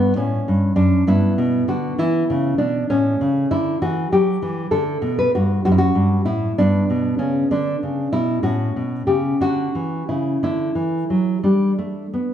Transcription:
0.00 0.11 G2 medium
0.00 1.04 A3 medium
0.00 0.16 B3 medium
0.16 0.40 A2 medium
0.16 0.75 C#4 medium
0.48 0.72 G2 medium
0.76 1.01 F#2 medium
0.76 1.05 D4 medium
1.07 1.32 G2 medium
1.07 2.85 B3 medium
1.07 1.66 E4 loud
1.38 1.62 B2 medium
1.68 1.92 D3 medium
1.68 1.97 F#4 medium
1.98 2.23 E3 medium
1.98 2.56 E4 loud
2.30 2.53 C#3 medium
2.58 2.83 B2 medium
2.58 2.87 D4 medium
2.90 3.14 A2 medium
2.90 4.68 A3 soft
2.90 3.48 C#4 medium
3.21 3.45 C#3 medium
3.51 3.75 D3 medium
3.51 3.80 E4 medium
3.82 4.06 E3 medium
3.82 4.10 F#4 medium
4.12 4.36 F#3 medium
4.12 4.70 G4 medium
4.42 4.66 E3 medium
4.71 4.96 D3 medium
4.71 6.54 A3 medium
4.71 5.16 A4 loud
5.02 5.27 B2 medium
5.19 5.34 B4 medium
5.35 5.60 G2 medium
5.35 5.64 F#4 medium
5.65 5.90 F#2 medium
5.65 5.71 F#4 loud
5.72 5.78 E4 medium
5.78 6.25 F#4 loud
5.95 6.20 G2 medium
6.25 6.51 A2 medium
6.25 6.55 E4 medium
6.58 6.83 G2 medium
6.58 8.40 B3 soft
6.58 7.17 D4 loud
6.90 7.14 B2 medium
7.18 7.43 C#3 medium
7.18 7.49 C#4 medium
7.51 7.75 D3 medium
7.51 8.10 D4 medium
7.83 8.07 C#3 medium
8.13 8.38 B2 medium
8.13 8.42 E4 medium
8.43 8.69 A2 medium
8.43 10.39 C#4 soft
8.43 9.05 F#4 medium
8.76 9.02 B2 medium
9.07 9.34 C#3 medium
9.07 9.39 G4 medium
9.40 9.67 D3 medium
9.40 10.06 F#4 loud
9.75 10.02 E3 medium
10.09 10.36 C#3 medium
10.09 10.41 E4 medium
10.43 10.70 D3 medium
10.43 11.77 A3 soft
10.43 11.41 E4 medium
10.75 11.03 E3 medium
11.10 11.37 F#3 medium
11.43 11.71 G3 medium
11.43 12.34 D4 medium
11.78 12.06 A3 medium
12.13 12.34 B3 medium

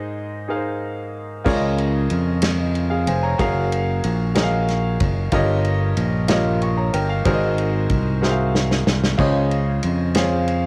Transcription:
0.00 0.45 G#2 medium
0.00 0.36 D#4 medium
0.00 0.36 G#4 medium
0.00 0.36 C5 medium
0.00 0.37 D#5 medium
0.48 1.33 D#4 medium
0.48 1.33 G#4 medium
0.48 0.56 A#4 soft
0.48 1.34 F5 medium
0.56 1.37 C5 medium
1.44 2.07 C#2 loud
1.44 2.39 C#3 medium
1.44 2.29 F4 medium
1.44 2.30 G#4 medium
1.44 2.30 A#4 medium
1.44 2.30 C#5 medium
1.44 1.53 D5 medium
1.44 kick medium
1.44 crash medium
1.53 2.33 D#5 medium
1.78 ride bell soft
2.10 3.09 F2 medium
2.10 ride bell soft
2.42 snare medium
2.42 ride bell medium
2.59 2.90 D#5 medium
2.75 ride bell soft
2.90 3.06 G#4 medium
2.90 3.06 F5 medium
3.07 3.37 F1 medium
3.07 3.23 C5 medium
3.07 3.23 G#5 medium
3.07 ride bell medium
3.23 3.38 C#5 medium
3.23 3.54 A#5 medium
3.38 4.00 F#1 loud
3.38 4.23 F#4 medium
3.38 4.23 G#4 medium
3.38 4.23 A#4 medium
3.38 4.23 C#5 medium
3.38 4.24 F5 loud
3.38 kick loud
3.38 ride bell medium
3.72 ride bell soft
4.04 4.97 A#1 loud
4.04 ride bell medium
4.35 5.19 F#4 medium
4.35 5.19 G#4 medium
4.35 5.20 A#4 medium
4.35 5.20 C#5 medium
4.35 4.43 D#5 medium
4.35 snare loud
4.35 ride bell medium
4.43 5.23 F5 medium
4.68 snare soft
4.68 ride bell soft
5.00 5.30 F#1 medium
5.00 kick loud
5.00 ride bell medium
5.32 5.93 G1 loud
5.32 6.26 G2 medium
5.32 6.16 F4 medium
5.32 6.16 G4 medium
5.32 6.17 A#4 medium
5.32 6.17 C#5 medium
5.32 6.17 D#5 loud
5.32 kick medium
5.32 ride bell medium
5.65 ride bell soft
5.97 6.90 A#1 loud
5.97 ride bell medium
6.28 7.12 F4 medium
6.28 7.13 G4 medium
6.28 6.61 A#4 medium
6.28 6.62 C#5 medium
6.28 6.62 D#5 medium
6.28 snare loud
6.28 ride bell medium
6.62 6.77 F5 soft
6.62 6.77 C#6 medium
6.62 ride bell soft
6.77 6.93 C#5 medium
6.77 6.93 A#5 medium
6.93 7.23 G1 medium
6.93 7.09 A#4 medium
6.93 7.09 G5 medium
6.93 ride bell medium
7.09 7.40 F5 medium
7.25 7.86 G#1 loud
7.25 8.18 G#2 medium
7.25 8.09 F#4 medium
7.25 8.09 G#4 medium
7.25 8.09 A#4 medium
7.25 8.09 C5 medium
7.25 7.33 D5 medium
7.25 kick loud
7.25 ride bell medium
7.33 8.13 D#5 medium
7.58 ride bell soft
7.89 8.83 C2 medium
7.89 kick medium
7.89 ride bell medium
8.22 9.05 F#4 medium
8.22 9.06 G#4 medium
8.22 9.06 A#4 medium
8.22 9.06 C5 medium
8.22 8.29 E5 medium
8.22 snare medium
8.30 9.10 F5 medium
8.55 snare medium
8.71 snare medium
8.87 9.16 C2 medium
8.87 snare medium
9.04 snare medium
9.18 9.79 C#2 medium
9.18 10.11 C#3 medium
9.18 10.02 F4 medium
9.18 10.02 G#4 medium
9.18 10.02 C5 medium
9.18 10.02 C#5 medium
9.18 10.02 D#5 medium
9.18 kick loud
9.18 splash medium
9.51 ride bell soft
9.83 10.66 F2 medium
9.83 ride bell medium
10.15 10.66 F4 medium
10.15 10.66 G#4 medium
10.15 10.66 C5 medium
10.15 10.66 C#5 medium
10.15 10.66 F5 medium
10.15 snare loud
10.15 ride bell medium
10.48 ride bell soft

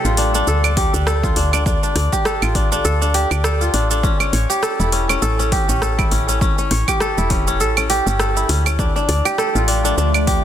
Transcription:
0.00 0.18 D4 medium
0.00 0.11 E4 medium
0.00 0.77 G4 loud
0.00 0.47 A4 loud
0.00 0.69 D5 medium
0.04 0.43 A1 medium
0.04 1.23 F4 medium
0.04 shaker soft
0.17 0.34 D4 medium
0.17 open hi-hat medium
0.35 0.64 D4 loud
0.35 shaker medium
0.47 0.88 D2 medium
0.47 1.06 A4 medium
0.47 shaker medium
0.64 0.94 D4 medium
0.64 claves medium
0.64 shaker soft
0.77 2.12 G4 loud
0.77 kick loud
0.77 open hi-hat loud
0.94 1.32 D2 loud
0.94 1.36 D4 medium
0.94 shaker medium
1.07 2.25 A4 medium
1.07 cross-stick loud
1.07 shaker medium
1.23 2.42 F4 medium
1.23 kick loud
1.23 shaker soft
1.36 1.77 D2 medium
1.36 1.53 D4 medium
1.36 open hi-hat medium
1.53 1.66 D4 medium
1.53 claves medium
1.53 shaker medium
1.66 1.83 D4 medium
1.66 kick loud
1.66 shaker medium
1.83 2.55 D4 medium
1.83 shaker soft
1.95 2.09 D2 loud
1.95 3.06 D5 medium
1.95 cross-stick soft
1.95 open hi-hat medium
2.13 3.14 G4 loud
2.13 kick medium
2.13 shaker medium
2.25 2.84 A4 loud
2.25 cross-stick loud
2.25 shaker medium
2.42 2.80 A1 medium
2.42 3.60 F4 medium
2.42 claves medium
2.42 shaker soft
2.55 2.71 D4 medium
2.55 kick loud
2.55 open hi-hat medium
2.72 3.01 D4 loud
2.72 shaker medium
2.85 3.26 D2 medium
2.85 3.44 A4 medium
2.85 shaker medium
3.01 3.31 D4 medium
3.01 shaker soft
3.14 4.49 G4 loud
3.14 open hi-hat medium
3.31 3.69 D2 loud
3.31 3.73 D4 medium
3.31 claves medium
3.31 shaker medium
3.44 4.62 A4 loud
3.44 cross-stick loud
3.44 shaker medium
3.61 4.85 F4 medium
3.61 shaker soft
3.74 4.15 A1 medium
3.74 3.90 D4 medium
3.74 open hi-hat medium
3.91 4.09 D4 medium
3.91 shaker medium
4.03 4.20 C#4 medium
4.03 kick loud
4.03 shaker medium
4.20 4.92 C#4 medium
4.20 claves medium
4.20 shaker soft
4.33 4.46 A1 loud
4.33 5.47 C#5 medium
4.33 open hi-hat medium
4.50 5.52 G4 loud
4.50 shaker medium
4.63 5.22 A4 loud
4.63 cross-stick loud
4.63 shaker medium
4.79 5.18 E1 medium
4.79 5.98 E4 medium
4.79 shaker soft
4.92 5.09 C#4 medium
4.92 open hi-hat medium
5.09 5.39 C#4 loud
5.09 claves medium
5.09 shaker medium
5.22 5.63 A1 medium
5.22 5.81 A4 medium
5.22 shaker medium
5.39 5.69 C#4 medium
5.39 shaker soft
5.52 6.88 G4 loud
5.52 kick loud
5.52 open hi-hat medium
5.69 6.07 A1 medium
5.69 6.11 C#4 medium
5.69 shaker medium
5.82 7.01 A4 loud
5.82 cross-stick loud
5.82 shaker medium
5.99 7.18 E4 medium
5.99 kick loud
5.99 claves medium
5.99 shaker soft
6.11 6.53 A1 medium
6.11 6.28 C#4 medium
6.11 open hi-hat medium
6.28 6.41 C#4 medium
6.28 shaker medium
6.41 6.58 C#4 medium
6.41 kick loud
6.41 shaker medium
6.58 7.30 C#4 medium
6.58 shaker soft
6.71 6.84 A1 loud
6.71 7.86 C#5 medium
6.71 cross-stick soft
6.71 open hi-hat medium
6.88 7.89 G4 loud
6.88 kick medium
6.88 claves medium
6.88 shaker medium
7.00 7.60 A4 loud
7.00 cross-stick loud
7.00 shaker medium
7.18 7.62 E1 medium
7.18 8.36 E4 medium
7.18 shaker soft
7.30 7.47 C#4 medium
7.30 kick loud
7.30 open hi-hat medium
7.47 7.77 C#4 loud
7.47 shaker medium
7.60 8.01 A1 loud
7.60 8.19 A4 medium
7.60 shaker medium
7.77 8.06 C#4 medium
7.77 claves medium
7.77 shaker soft
7.90 9.25 G4 loud
7.90 open hi-hat medium
8.06 8.45 G1 loud
8.06 8.49 C#4 medium
8.06 shaker medium
8.20 9.38 A4 loud
8.20 cross-stick loud
8.20 shaker medium
8.36 9.61 E4 medium
8.36 shaker soft
8.49 8.90 D2 loud
8.49 8.66 C#4 medium
8.49 open hi-hat medium
8.66 8.85 C#4 medium
8.66 claves medium
8.66 shaker medium
8.78 10.44 D3 medium
8.78 10.44 F3 medium
8.78 10.44 A3 medium
8.78 8.95 D4 medium
8.78 10.44 E5 medium
8.78 kick loud
8.78 shaker medium
8.96 9.67 D4 medium
8.96 shaker soft
9.08 9.22 D2 loud
9.08 10.19 D5 medium
9.08 open hi-hat medium
9.25 10.27 G4 loud
9.25 claves medium
9.25 shaker medium
9.38 10.44 A4 loud
9.38 cross-stick loud
9.38 shaker medium
9.55 9.93 A1 medium
9.55 10.44 F4 medium
9.55 shaker soft
9.68 9.84 D4 medium
9.68 open hi-hat medium
9.85 9.97 D4 medium
9.85 shaker medium
9.97 10.39 D2 medium
9.97 10.14 D4 medium
9.97 shaker medium
10.14 10.44 D4 medium
10.14 claves medium
10.14 shaker soft
10.27 10.44 G4 loud
10.27 kick loud
10.27 open hi-hat medium

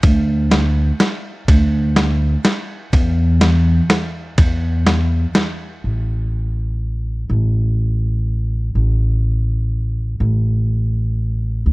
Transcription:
0.03 0.90 D2 medium
0.03 kick loud
0.03 ride medium
0.51 snare medium
0.51 ride medium
1.00 snare medium
1.00 ride medium
1.48 2.34 D2 medium
1.48 kick loud
1.48 ride medium
1.96 snare medium
1.96 ride medium
2.45 snare medium
2.45 ride medium
2.93 3.79 E2 loud
2.93 kick loud
2.93 ride medium
3.41 snare medium
3.41 ride medium
3.90 snare medium
3.90 ride medium
4.38 5.24 E2 medium
4.38 kick loud
4.38 ride medium
4.86 snare medium
4.86 ride medium
5.35 snare medium
5.35 ride medium
5.84 7.26 A1 soft
7.30 8.72 A1 medium
8.75 10.18 A1 soft
10.20 11.63 A1 medium
11.66 11.73 D2 medium

